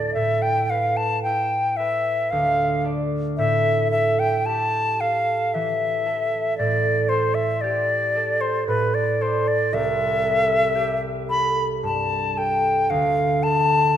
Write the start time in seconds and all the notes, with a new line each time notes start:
Already playing: D2 A2 F4 A4 D5
0.14 A2 E5
0.42 G5
0.70 B4 F5
0.97 A5
1.23 E4 G5
1.77 B4 E5
2.30 D2 F5
2.85 A4 D5
3.37 A2 E5
3.92 A4 E5
4.19 G5
4.46 G4 A5
5.01 A4 F5
5.54 E3 E5
6.06 A4
6.58 A2 D5
7.09 A4 C5
7.34 E5
7.61 G4 D5
8.16 A4
8.41 C5
8.68 A2 B4
8.94 D5
9.21 A4 C5 D5
9.48 D5
9.73 C2 E5
10.24 A4
10.75 G4
11.29 A4 B5
11.83 G2 A5
12.37 A4 G5
12.90 D2 F5
13.43 A4 A5